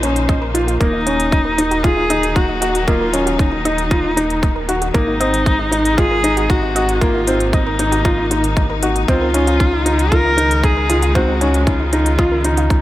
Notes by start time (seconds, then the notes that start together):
Already playing: A#1 C#3 A#3 D#4 C5
0.03 C#4 D#4, closed hi-hat
0.16 closed hi-hat
0.29 D#5, kick, closed hi-hat
0.42 A#4
0.54 D#4 F4, closed hi-hat
0.67 F4, closed hi-hat
0.80 D#1 D#3 F#3 A#3 D#4, kick, closed hi-hat
0.93 D#4
1.07 C#4 D#4, closed hi-hat
1.20 closed hi-hat
1.32 D#5, kick, closed hi-hat
1.45 A#4
1.58 D#4, closed hi-hat
1.71 F#4, closed hi-hat
1.84 D#4 F4 G#4, kick, closed hi-hat
1.97 D#4
2.10 D#4 D#5, closed hi-hat
2.23 closed hi-hat
2.36 D#4 F#4, kick, closed hi-hat
2.49 D#4
2.61 D#4 F#4, closed hi-hat
2.75 closed hi-hat
2.87 A#3 F4 D#5, kick, closed hi-hat
3.01 A#4
3.13 C#4 D#4, closed hi-hat
3.26 F#4, closed hi-hat
3.38 D#4, kick, closed hi-hat
3.52 D#4
3.65 D#4 D#5, closed hi-hat
3.78 closed hi-hat
3.91 D#4 F4, kick, closed hi-hat
4.04 D#4
4.17 D#4, closed hi-hat
4.30 closed hi-hat
4.43 D#5, kick, closed hi-hat
4.56 A#4
4.69 D#4 F#4, closed hi-hat
4.82 F#4, closed hi-hat
4.94 G#1 C3 G#3 A#3 D#4, kick, closed hi-hat
5.08 D#4
5.20 C4 D#5, closed hi-hat
5.34 closed hi-hat
5.46 D#4, kick, closed hi-hat
5.59 D#4
5.71 D#4, closed hi-hat
5.85 closed hi-hat
5.98 F4 G#4 D#5, kick, closed hi-hat
6.11 A#4
6.24 D#4, closed hi-hat
6.37 F#4, closed hi-hat
6.49 D#4 F#4, kick, closed hi-hat
6.63 D#4
6.76 F#4 D#5, closed hi-hat
6.89 closed hi-hat
7.01 A#3 D#4 F4, kick, closed hi-hat
7.14 D#4
7.27 C4 D#4, closed hi-hat
7.40 closed hi-hat
7.53 D#4 D#5, kick, closed hi-hat
7.67 A#4
7.79 D#4, closed hi-hat
7.92 F#4, closed hi-hat
8.05 D#4 F4, kick, closed hi-hat
8.18 D#4
8.31 D#4 F4, closed hi-hat
8.44 closed hi-hat
8.57 D#4, kick, closed hi-hat
8.70 A#4
8.82 D#4 F#4, closed hi-hat
8.96 closed hi-hat
9.08 C#2 C#3 D#3 G#3 C4 F4 D#5, kick, closed hi-hat
9.21 A#4
9.34 C#4 D#4, closed hi-hat
9.47 F4, closed hi-hat
9.60 D#4, kick, closed hi-hat
9.73 D#4
9.86 D#4, closed hi-hat
9.99 closed hi-hat
10.12 D#4 F4 A#4, kick, closed hi-hat
10.25 D#4
10.37 D#4, closed hi-hat
10.51 closed hi-hat
10.64 G#4 D#5, kick, closed hi-hat
10.77 A#4
10.89 D#4 F4, closed hi-hat
11.02 F4, closed hi-hat
11.15 C4 D#4 F#4, kick, closed hi-hat
11.28 D#4
11.41 C#4 D#4, closed hi-hat
11.54 closed hi-hat
11.67 D#4 F4, kick, closed hi-hat
11.80 D#4
11.92 D#4, closed hi-hat
12.06 closed hi-hat
12.19 F4 D#5, kick, closed hi-hat
12.32 A#4
12.44 D#4, closed hi-hat
12.57 F4, closed hi-hat
12.70 D#4, kick, closed hi-hat